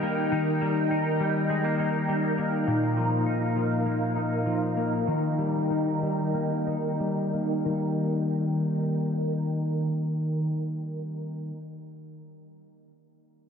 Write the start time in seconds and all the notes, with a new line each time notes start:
Already playing: D#3 G3 D#4 A#4 G5 A#5
0.03 A#3
0.32 D#3
0.61 G3
0.91 D#4
1.20 G3
1.50 G#3
1.64 A#3
1.79 D#4
2.09 G3
2.38 A#3
2.67 A#2 A#4 F5
2.97 F3
3.26 D#4
3.56 F3
3.86 A#3
4.16 D#4
4.46 F3
4.77 A#3
5.07 D#3 G5
5.38 G3
5.70 D#4
6.02 G3
6.34 A#3
6.67 D#4
7.00 G3
7.34 A#3
7.65 D#3 G3 D#4 A#4 G5 A#5
7.71 A#3 D#4